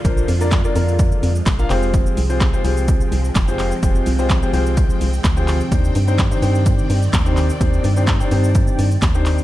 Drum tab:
HH |x-o-x-o-x-o-x-o-|x-o-x-o-x-o-x-o-|x-o-x-o-x-o-x-o-|x-o-x-o-x-o-x-o-|
SH |xxxxxxxxxxxxxxxx|xxxxxxxxxxxxxxxx|xxxxxxxxxxxxxxxx|xxxxxxxxxxxxxxxx|
CP |----x-------x-x-|----x-------x-x-|----x-------x-x-|----x-------x-x-|
SD |----o-------o---|----o-------o---|----o-------o---|----o-------o---|
BD |o---o---o---o---|o---o---o---o---|o---o---o---o---|o---o---o---o---|

HH |x-o-x-o-x-o-x-o-|
SH |xxxxxxxxxxxxxxxx|
CP |----x-------x-x-|
SD |----o-------o---|
BD |o---o---o---o---|